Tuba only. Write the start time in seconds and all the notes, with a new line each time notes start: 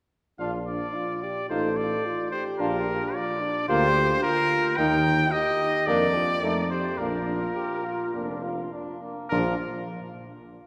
0.39 A#1
1.50 A1
2.59 A#1
3.69 D2
4.78 D#2
5.88 F2
6.43 F2
7.00 A#1
8.15 F1
9.31 A#1